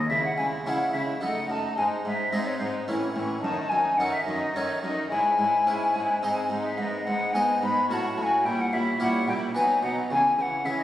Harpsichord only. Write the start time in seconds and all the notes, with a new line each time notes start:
0.10 C#3
0.38 C#3
0.66 C#3 C#4 E4 G#4
0.94 C#3
1.21 F#2 D#4 A4
1.50 F#2
1.78 G#2
2.05 G#2
2.33 G#2 C4 D#4 G#4
2.61 G#2
2.88 A2 C#4 E4
3.16 A2
3.44 F#2
3.72 F#2
4.00 F#2 C#4 D#4 A4
4.28 F#2
4.56 F#2 C#4 D#4 A4
4.84 F#2
5.12 G#2
5.39 G#2
5.67 G#2 C#4 E4 C#5
5.95 G#2
6.23 G#2 C4 D#4 D#5
6.50 G#2
6.78 G#2
7.07 G#2
7.35 G#2 B3 D#4 D#5
7.63 G#2
7.91 A2 C#4 F#4 C#5
8.18 A2
8.46 A#2
8.73 A#2
9.00 A#2 C#4 G4 C#5
9.28 A#2
9.55 B2 D#4 F#4 B4
9.83 B2
10.10 C#3
10.39 C#3
10.65 C#3 E4 G#4